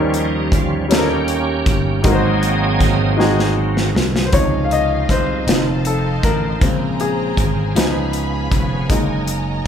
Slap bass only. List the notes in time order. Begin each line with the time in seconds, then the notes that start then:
Already playing: D#2
1.66 G1
2.04 G#1
3.94 C2
4.33 C#2
5.09 C2
5.46 F1
6.23 A1
6.61 A#1
7.37 G#1
7.75 C#2
8.51 F1
8.89 F#1